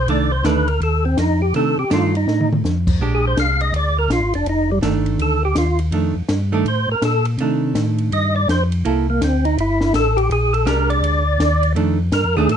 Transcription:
0.07 0.43 C2 medium
0.07 0.29 D#3 medium
0.07 0.30 A3 medium
0.07 0.30 D4 medium
0.07 0.32 D5 medium
0.07 ride medium
0.32 0.45 C5 medium
0.44 0.80 D2 medium
0.44 0.65 D#3 medium
0.44 0.66 A3 medium
0.44 0.66 D4 medium
0.44 0.68 B4 medium
0.44 snare medium
0.44 hi-hat pedal soft
0.44 ride medium
0.68 0.81 A#4 medium
0.68 ride soft
0.81 1.16 D#2 medium
0.81 1.05 A4 medium
0.81 ride medium
1.05 1.18 C4 medium
1.17 1.53 F2 medium
1.17 1.41 D#4 medium
1.17 snare medium
1.17 hi-hat pedal soft
1.17 ride medium
1.42 1.54 G4 medium
1.54 1.76 C3 medium
1.54 1.75 D#3 medium
1.54 1.76 A3 medium
1.54 1.76 D4 medium
1.54 1.78 A4 medium
1.54 ride medium
1.78 1.84 C3 soft
1.78 1.91 G4 medium
1.90 2.26 G2 medium
1.90 2.11 D#3 medium
1.90 2.12 A3 medium
1.90 2.12 D4 medium
1.90 2.15 F4 medium
1.90 snare medium
1.90 hi-hat pedal soft
1.90 ride medium
2.15 2.49 D#4 medium
2.15 ride soft
2.27 2.63 A2 medium
2.27 snare soft
2.40 mid tom medium
2.53 mid tom medium
2.64 2.99 F2 medium
2.64 snare soft
2.64 hi-hat pedal medium
2.87 kick medium
2.87 crash medium
3.00 3.36 A#1 medium
3.00 4.02 G#3 medium
3.00 4.03 D4 medium
3.00 4.03 G4 medium
3.15 3.25 G#4 medium
3.27 3.38 C5 medium
3.37 3.72 C2 medium
3.37 3.61 F5 loud
3.37 snare medium
3.37 hi-hat pedal soft
3.37 ride medium
3.61 3.74 D#5 medium
3.61 ride soft
3.73 4.08 D2 medium
3.73 3.97 D5 medium
3.73 ride medium
3.99 4.11 A#4 medium
4.08 4.21 A#1 medium
4.08 4.34 F4 medium
4.08 snare medium
4.08 hi-hat pedal medium
4.08 ride medium
4.21 4.34 G#1 soft
4.34 4.44 F1 medium
4.34 4.47 D4 medium
4.34 ride soft
4.45 4.81 F1 medium
4.45 ride soft
4.49 4.71 D#4 medium
4.71 4.79 G3 medium
4.81 5.18 G1 medium
4.81 5.38 D#3 medium
4.81 5.38 A3 medium
4.81 5.38 D4 medium
4.81 snare medium
4.81 hi-hat pedal medium
4.81 ride medium
5.06 ride soft
5.18 5.54 D2 medium
5.18 5.43 A4 medium
5.18 ride medium
5.45 5.57 G4 medium
5.55 5.91 D#2 medium
5.55 5.80 F4 medium
5.55 snare medium
5.55 hi-hat pedal medium
5.55 ride medium
5.79 ride soft
5.92 6.14 F2 medium
5.92 6.13 D#3 soft
5.92 6.14 A3 medium
5.92 6.14 D4 soft
5.92 ride medium
6.15 6.22 F2 soft
6.28 6.64 G2 medium
6.28 snare medium
6.28 hi-hat pedal medium
6.28 ride medium
6.52 6.64 D#3 medium
6.52 6.65 A3 medium
6.52 6.65 D4 medium
6.65 6.87 A2 medium
6.65 6.89 C5 medium
6.65 ride medium
6.88 6.95 A2 soft
6.88 7.03 A#4 medium
7.02 7.37 A#2 medium
7.02 7.26 A4 medium
7.02 snare medium
7.02 hi-hat pedal soft
7.02 ride medium
7.25 ride soft
7.38 7.74 C3 medium
7.38 8.41 D#3 medium
7.38 8.41 A3 medium
7.38 8.42 D4 medium
7.38 ride medium
7.75 8.11 A2 medium
7.75 snare medium
7.75 hi-hat pedal medium
7.75 ride medium
7.98 ride soft
8.12 8.47 G2 medium
8.12 8.35 D#5 medium
8.12 ride medium
8.36 8.48 D5 medium
8.49 8.84 F2 medium
8.49 8.64 C5 medium
8.49 snare medium
8.49 hi-hat pedal soft
8.49 ride medium
8.72 ride medium
8.85 9.21 C2 medium
8.85 9.06 A#3 medium
8.85 9.06 E4 medium
8.85 9.06 A4 medium
8.85 ride medium
9.10 9.22 A#3 medium
9.21 9.57 D2 medium
9.21 9.45 C4 medium
9.21 snare medium
9.21 hi-hat pedal medium
9.21 ride medium
9.45 9.58 D#4 medium
9.45 ride soft
9.58 9.93 G1 medium
9.58 9.93 E4 medium
9.58 ride medium
9.81 snare medium
9.94 10.29 A1 medium
9.94 10.17 A4 loud
9.94 snare medium
9.94 hi-hat pedal soft
9.94 ride medium
10.17 10.30 G4 medium
10.17 ride soft
10.30 10.66 A#1 medium
10.30 10.54 G#4 medium
10.30 ride medium
10.53 10.66 A4 medium
10.53 ride soft
10.65 11.02 C2 medium
10.65 11.22 G#3 medium
10.65 11.22 D4 medium
10.65 11.22 G4 medium
10.65 10.90 A#4 medium
10.65 snare medium
10.65 hi-hat pedal medium
10.65 ride medium
10.90 11.73 D5 loud
10.90 ride soft
11.02 11.38 D2 medium
11.02 ride medium
11.39 11.75 D#2 medium
11.39 snare medium
11.39 hi-hat pedal medium
11.39 ride medium
11.63 ride soft
11.75 12.11 F2 medium
11.75 11.97 D#3 medium
11.75 11.97 A3 medium
11.75 11.98 D4 medium
11.75 ride medium
12.12 12.24 G2 medium
12.12 12.36 A#4 medium
12.12 snare medium
12.12 hi-hat pedal medium
12.12 ride medium
12.24 12.37 F2 medium
12.36 12.48 D#2 medium
12.36 12.49 D#3 medium
12.36 12.49 A3 medium
12.36 12.49 D4 medium
12.36 12.50 G#4 medium
12.49 12.57 A2 medium
12.49 12.57 A4 loud
12.49 ride medium

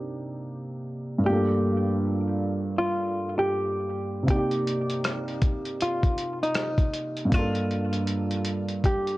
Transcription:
0.00 1.17 C3 medium
0.00 1.19 A#3 medium
0.00 1.21 D4 medium
0.00 1.22 D#4 medium
0.00 1.24 G4 medium
1.18 4.21 G2 medium
1.18 1.31 A3 soft
1.25 4.25 A#3 medium
1.25 4.25 D4 medium
1.25 4.26 F4 medium
1.25 2.20 G4 medium
1.32 4.28 A4 medium
2.78 3.34 F4 medium
3.39 4.25 G4 medium
4.23 7.25 C3 medium
4.23 7.27 A#3 medium
4.28 5.24 G4 medium
4.28 7.29 D5 medium
4.28 kick loud
4.28 closed hi-hat medium
4.33 7.30 D#4 medium
4.33 7.32 G4 medium
4.51 closed hi-hat soft
4.67 closed hi-hat medium
4.90 closed hi-hat soft
5.04 cross-stick medium
5.04 closed hi-hat medium
5.28 closed hi-hat soft
5.42 kick loud
5.42 closed hi-hat medium
5.65 closed hi-hat soft
5.81 6.38 F4 medium
5.81 closed hi-hat medium
6.03 kick medium
6.03 closed hi-hat soft
6.18 closed hi-hat medium
6.43 7.34 D#4 medium
6.43 closed hi-hat soft
6.55 cross-stick medium
6.55 closed hi-hat medium
6.78 kick medium
6.78 closed hi-hat soft
6.94 closed hi-hat medium
7.17 closed hi-hat soft
7.25 9.18 G2 medium
7.25 9.18 A#3 medium
7.32 9.18 D4 medium
7.32 8.28 F4 medium
7.32 9.18 F4 medium
7.32 kick loud
7.32 closed hi-hat medium
7.39 9.18 A4 medium
7.55 closed hi-hat soft
7.71 closed hi-hat medium
7.93 closed hi-hat soft
8.08 closed hi-hat medium
8.31 closed hi-hat soft
8.45 closed hi-hat medium
8.69 closed hi-hat soft
8.84 9.18 G4 medium
8.84 kick medium
8.84 closed hi-hat medium
9.07 closed hi-hat soft

